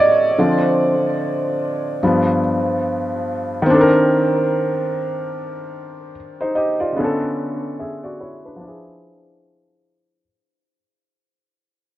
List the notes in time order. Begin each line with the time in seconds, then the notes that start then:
Already playing: A2 F#3 C#4 C#5 D5 D#5 E5
0.38 D3 F3 C4
2.03 G2 F3 B3
3.62 D#3 C4
3.70 D4
3.74 A4
3.81 A#4
6.41 D#4 C5
6.55 G4 D#5
6.80 F4 D5
6.92 C#3
6.96 D3 B3 C#4
7.04 A4
7.79 G#4 E5
8.03 F#4 D5
8.20 E4 C#5
8.45 D4 B4
8.56 F3
8.60 D4
8.64 E4
8.68 G#4